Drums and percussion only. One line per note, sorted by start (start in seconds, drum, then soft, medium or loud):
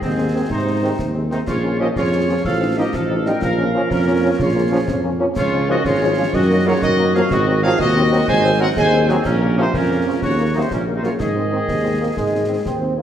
0.02 concert bass drum medium
0.02 snare medium
0.50 concert bass drum medium
0.50 snare medium
0.99 concert bass drum medium
0.99 snare medium
1.31 snare medium
1.47 concert bass drum medium
1.47 snare medium
1.47 crash soft
1.96 concert bass drum medium
1.96 snare medium
2.45 concert bass drum medium
2.45 snare medium
2.93 concert bass drum medium
2.93 snare medium
3.26 snare medium
3.42 concert bass drum medium
3.42 snare medium
3.91 concert bass drum medium
3.91 snare medium
4.39 concert bass drum medium
4.39 snare medium
4.88 concert bass drum medium
4.88 snare medium
5.36 concert bass drum medium
5.36 snare medium
5.36 crash medium
5.85 concert bass drum medium
5.85 snare medium
6.33 concert bass drum medium
6.33 snare medium
6.82 concert bass drum medium
6.82 snare medium
7.15 snare medium
7.31 concert bass drum medium
7.31 snare medium
7.79 concert bass drum medium
7.79 snare medium
8.28 concert bass drum medium
8.28 snare medium
8.77 concert bass drum medium
8.77 snare medium
9.09 snare medium
9.25 concert bass drum medium
9.25 snare medium
9.25 crash soft
9.74 concert bass drum medium
9.74 snare medium
10.22 concert bass drum medium
10.22 snare medium
10.71 concert bass drum medium
10.71 snare medium
11.04 snare medium
11.20 concert bass drum medium
11.20 snare medium
11.68 concert bass drum medium
11.68 snare medium
12.17 concert bass drum medium
12.17 snare medium
12.66 concert bass drum medium
12.66 snare medium